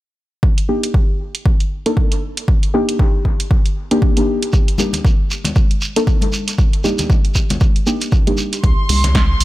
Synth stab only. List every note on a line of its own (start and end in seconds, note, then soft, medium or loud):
0.69 0.86 A#3 medium
0.69 0.86 D4 medium
0.69 0.87 D#4 medium
0.69 0.87 G4 medium
1.86 2.12 A#3 medium
1.86 2.12 D4 medium
1.86 2.12 D#4 medium
1.86 2.12 A4 loud
2.74 3.00 A#3 medium
2.74 3.00 D4 medium
2.74 3.00 D#4 medium
2.74 3.00 G4 loud
3.91 4.13 A#3 medium
3.91 4.13 D4 medium
3.91 4.13 D#4 medium
3.91 4.13 G4 medium
4.17 4.76 A#3 medium
4.17 4.76 D4 medium
4.17 4.76 D#4 medium
4.17 4.77 G4 medium
4.79 4.97 A#3 medium
4.79 4.97 D4 medium
4.79 4.97 D#4 medium
4.79 4.97 G4 medium
5.96 6.22 A#3 medium
5.96 6.23 D4 medium
5.96 6.23 D#4 medium
5.96 6.23 A4 loud
6.84 7.10 A#3 medium
6.84 7.10 D4 medium
6.84 7.10 D#4 medium
6.84 7.10 G4 loud
7.86 8.23 A#3 medium
7.86 8.24 D4 medium
7.86 8.24 D#4 medium
7.86 8.24 G4 loud
8.27 8.53 A#3 medium
8.27 8.53 D4 medium
8.27 8.53 D#4 medium
8.27 8.53 G4 loud
8.89 9.07 A#3 medium
8.89 9.07 D4 medium
8.89 9.07 D#4 medium
8.89 9.07 G4 medium